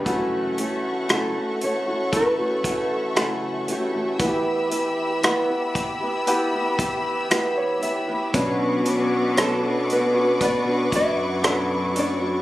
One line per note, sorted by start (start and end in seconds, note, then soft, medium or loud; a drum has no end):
0.05 0.58 F#2 medium
0.05 0.58 C#3 medium
0.05 0.56 E3 medium
0.05 1.04 A3 medium
0.05 0.58 A3 medium
0.05 0.58 C#4 medium
0.05 1.04 E4 medium
0.05 1.04 F#4 medium
0.05 0.59 F#4 medium
0.05 4.16 A4 medium
0.05 8.30 E5 medium
0.05 4.16 F#5 medium
0.05 4.16 C#6 medium
0.05 kick medium
0.05 closed hi-hat medium
0.58 1.09 E3 medium
0.58 1.09 A3 medium
0.58 1.09 C#4 medium
0.58 1.10 F#4 medium
0.58 closed hi-hat medium
1.09 1.35 F#2 medium
1.09 1.35 C#3 medium
1.09 1.35 E3 medium
1.09 2.07 A3 medium
1.09 1.35 A3 medium
1.09 1.34 C#4 medium
1.09 2.07 E4 soft
1.09 2.08 F#4 medium
1.09 1.33 F#4 medium
1.09 cross-stick medium
1.09 closed hi-hat medium
1.13 1.64 A4 medium
1.34 1.88 E3 soft
1.34 1.87 A3 soft
1.34 1.86 C#4 soft
1.34 1.85 F#4 soft
1.61 2.16 C#5 medium
1.61 closed hi-hat medium
1.86 2.39 E3 soft
1.86 2.39 A3 soft
1.86 2.38 C#4 soft
1.86 2.37 F#4 soft
2.12 3.11 A3 medium
2.12 3.11 E4 medium
2.12 3.11 A4 medium
2.12 kick medium
2.12 closed hi-hat medium
2.16 2.89 B4 medium
2.38 2.62 E3 soft
2.38 2.63 A3 soft
2.38 2.64 C#4 soft
2.38 2.64 F#4 soft
2.63 3.15 E3 soft
2.63 3.15 A3 soft
2.63 3.16 C#4 soft
2.63 3.16 F#4 soft
2.63 kick medium
2.63 closed hi-hat medium
2.89 3.19 A4 medium
3.15 3.67 F#2 medium
3.15 3.68 C#3 medium
3.15 3.66 E3 medium
3.15 4.14 A3 medium
3.15 3.67 A3 medium
3.15 3.68 C#4 medium
3.15 4.14 E4 medium
3.15 3.68 F#4 medium
3.15 3.33 A4 medium
3.15 4.15 F#5 medium
3.15 cross-stick medium
3.15 closed hi-hat medium
3.67 3.93 E3 soft
3.67 3.94 A3 soft
3.67 3.93 C#4 medium
3.67 3.92 F#4 medium
3.67 closed hi-hat medium
3.72 6.76 G4 medium
3.93 4.18 E3 soft
3.93 4.20 A3 soft
3.93 4.20 C#4 soft
3.93 4.20 F#4 soft
4.19 4.69 E3 medium
4.19 5.71 E3 soft
4.19 5.18 B3 soft
4.19 4.70 B3 medium
4.19 5.18 E4 soft
4.19 4.71 E4 medium
4.19 4.27 F#4 soft
4.19 8.30 G4 medium
4.19 4.72 G4 medium
4.19 8.30 B5 medium
4.19 8.30 E6 medium
4.19 kick medium
4.19 closed hi-hat medium
4.27 5.22 G4 medium
4.70 5.21 E3 medium
4.70 5.22 B3 medium
4.70 5.23 E4 soft
4.70 5.23 G4 medium
4.70 closed hi-hat medium
5.23 5.49 E3 medium
5.23 5.49 B3 medium
5.23 6.22 B3 medium
5.23 5.49 E4 medium
5.23 6.22 E4 medium
5.23 5.48 G4 medium
5.23 6.22 F#5 medium
5.23 cross-stick medium
5.23 closed hi-hat medium
5.49 6.02 B3 soft
5.49 6.01 E4 soft
5.49 6.00 G4 soft
5.75 kick medium
5.75 closed hi-hat medium
6.01 6.54 B3 soft
6.01 6.52 E4 soft
6.01 6.51 G4 medium
6.27 7.25 B3 medium
6.27 7.25 E4 medium
6.27 7.26 G4 medium
6.27 closed hi-hat medium
6.52 6.78 B3 soft
6.52 6.79 E4 soft
6.52 6.78 G4 soft
6.78 7.29 E3 medium
6.78 7.30 B3 medium
6.78 7.30 E4 medium
6.78 7.31 G4 medium
6.78 kick medium
6.78 closed hi-hat medium
7.30 7.80 E3 medium
7.30 7.81 B3 medium
7.30 7.82 E4 medium
7.30 7.83 G4 medium
7.30 7.55 E5 medium
7.30 7.78 F#5 medium
7.30 cross-stick medium
7.30 closed hi-hat medium
7.57 8.06 C#5 medium
7.81 8.07 E3 medium
7.81 8.08 B3 medium
7.81 8.08 E4 medium
7.81 8.07 G4 medium
7.81 8.30 E5 medium
7.81 closed hi-hat medium
8.08 8.34 B3 soft
8.08 8.34 E4 medium
8.08 8.34 G4 medium
8.08 8.34 B4 medium
8.34 8.85 B2 medium
8.34 10.88 B2 medium
8.34 9.85 B2 medium
8.34 8.83 F#3 medium
8.34 9.32 C#4 medium
8.34 8.85 C#4 medium
8.34 8.84 D4 medium
8.34 9.32 D4 medium
8.34 8.86 F#4 medium
8.34 12.42 B4 medium
8.34 9.33 B4 medium
8.34 12.42 F#5 medium
8.34 12.42 C#6 medium
8.34 12.42 D6 medium
8.34 kick medium
8.34 closed hi-hat medium
8.85 9.36 F#3 medium
8.85 9.37 C#4 medium
8.85 9.36 D4 medium
8.85 9.37 F#4 medium
8.85 closed hi-hat medium
9.37 9.63 B2 medium
9.37 9.63 F#3 medium
9.37 10.35 C#4 medium
9.37 9.63 C#4 medium
9.37 10.35 D4 soft
9.37 9.63 D4 medium
9.37 9.62 F#4 medium
9.37 10.36 A4 medium
9.37 cross-stick medium
9.37 closed hi-hat medium
9.41 9.92 A4 medium
9.63 10.14 C#4 soft
9.63 10.15 D4 soft
9.63 10.13 F#4 soft
9.90 10.44 B4 medium
9.90 closed hi-hat medium
10.14 10.66 C#4 soft
10.14 10.67 D4 soft
10.14 10.65 F#4 medium
10.41 11.39 B3 medium
10.41 11.39 D4 medium
10.41 11.39 B4 medium
10.41 10.58 D5 medium
10.41 kick medium
10.41 closed hi-hat medium
10.66 10.92 C#4 soft
10.66 10.91 D4 soft
10.66 10.92 F#4 soft
10.91 12.42 F#2 medium
10.91 11.42 F#3 soft
10.91 11.43 C#4 medium
10.91 11.42 D4 soft
10.91 11.43 F#4 medium
10.91 kick medium
10.91 closed hi-hat medium
10.95 11.93 E5 medium
11.43 11.95 B2 medium
11.43 11.93 F#3 medium
11.43 12.42 B3 medium
11.43 11.95 C#4 medium
11.43 11.94 D4 medium
11.43 12.42 D4 medium
11.43 11.96 F#4 medium
11.43 12.42 A4 medium
11.43 cross-stick medium
11.43 closed hi-hat medium
11.95 12.21 F#3 soft
11.95 12.20 C#4 medium
11.95 12.21 D4 medium
11.95 12.19 F#4 medium
11.95 closed hi-hat medium
11.99 12.42 D5 medium
12.20 12.42 C#4 soft
12.20 12.42 D4 soft
12.20 12.42 F#4 medium